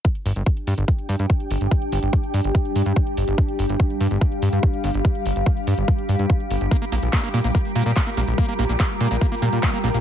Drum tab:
HH |xxoxxxoxxxoxxxox|xxoxxxoxxxoxxxox|xxoxxxoxxxoxxxox|xxoxxxoxxxoxxxox|
CP |----------------|----------------|----------------|----------------|
BD |o---o---o---o---|o---o---o---o---|o---o---o---o---|o---o---o---o---|

HH |xxoxxxoxxxoxxxox|xxoxxxoxxxoxxxox|
CP |----x-------x---|----x-------x---|
BD |o---o---o---o---|o---o---o---o---|